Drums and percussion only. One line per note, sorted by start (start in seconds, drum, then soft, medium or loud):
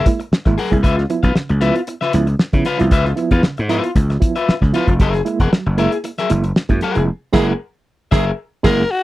0.06 kick loud
0.06 closed hi-hat loud
0.20 closed hi-hat soft
0.33 snare loud
0.46 kick loud
0.46 snare soft
0.46 closed hi-hat soft
0.58 open hi-hat medium
0.72 kick medium
0.72 closed hi-hat soft
0.84 kick loud
0.84 closed hi-hat medium
0.98 snare soft
1.10 closed hi-hat medium
1.23 kick medium
1.23 closed hi-hat soft
1.36 snare medium
1.49 closed hi-hat soft
1.61 snare soft
1.61 closed hi-hat medium
1.76 closed hi-hat medium
1.87 closed hi-hat medium
2.02 snare soft
2.13 closed hi-hat loud
2.27 closed hi-hat medium
2.39 snare loud
2.53 kick medium
2.53 closed hi-hat soft
2.65 snare soft
2.65 closed hi-hat medium
2.79 snare soft
2.79 closed hi-hat soft
2.91 kick loud
2.91 closed hi-hat medium
3.05 snare soft
3.17 closed hi-hat medium
3.31 kick medium
3.31 closed hi-hat soft
3.43 snare loud
3.57 closed hi-hat soft
3.69 closed hi-hat medium
3.84 closed hi-hat medium
3.95 kick loud
3.95 closed hi-hat loud
4.10 snare soft
4.10 closed hi-hat soft
4.22 kick loud
4.22 closed hi-hat loud
4.36 closed hi-hat medium
4.49 snare loud
4.62 kick medium
4.62 snare soft
4.74 closed hi-hat medium
4.88 kick medium
4.88 closed hi-hat soft
5.00 kick loud
5.00 closed hi-hat medium
5.14 snare soft
5.14 closed hi-hat soft
5.26 closed hi-hat medium
5.40 kick medium
5.40 closed hi-hat soft
5.53 snare loud
5.78 snare soft
5.78 closed hi-hat medium
5.92 closed hi-hat medium
6.04 closed hi-hat medium
6.18 snare soft
6.18 closed hi-hat soft
6.30 closed hi-hat loud
6.44 closed hi-hat medium
6.56 snare loud
6.69 kick medium
6.69 closed hi-hat soft
6.81 snare soft
6.81 closed hi-hat medium
6.95 snare soft
6.95 closed hi-hat soft
7.34 kick loud
7.34 snare loud
7.34 crash medium
8.12 kick loud
8.12 snare loud
8.64 kick loud
8.64 snare loud
8.64 crash medium